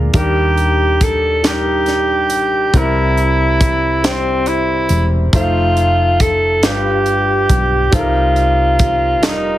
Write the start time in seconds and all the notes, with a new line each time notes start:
Already playing: D2 A#2 G#3 D4 F4 A#4
0.14 D#2 D#3 G3 D4 D#4 G4 A#4, kick, closed hi-hat
0.57 closed hi-hat
1.01 A4, kick, closed hi-hat
1.43 G3 D4 D#4 G4 A#4, snare, closed hi-hat
1.86 snare, closed hi-hat
2.30 B1, closed hi-hat
2.74 C2 C3 G3 C4 E4 A#4, kick, closed hi-hat
3.17 closed hi-hat
3.61 kick, closed hi-hat
4.03 G3 C4 E4 C5, snare, closed hi-hat
4.46 E4, closed hi-hat
4.89 E1, closed hi-hat
5.33 F1 A3 D#4 F4 C5, kick, closed hi-hat
5.77 closed hi-hat
6.20 A4, kick, closed hi-hat
6.62 G1 G2 G3 D4 F4 G4 B4, snare, closed hi-hat
7.06 closed hi-hat
7.49 B1, kick, closed hi-hat
7.91 C2 C3 G3 C4 D#4 F4 A4, kick, closed hi-hat
7.99 A#4
8.36 closed hi-hat
8.79 kick, closed hi-hat
9.22 F1 G3 D#4 F4 A4, snare, closed hi-hat
9.30 A#4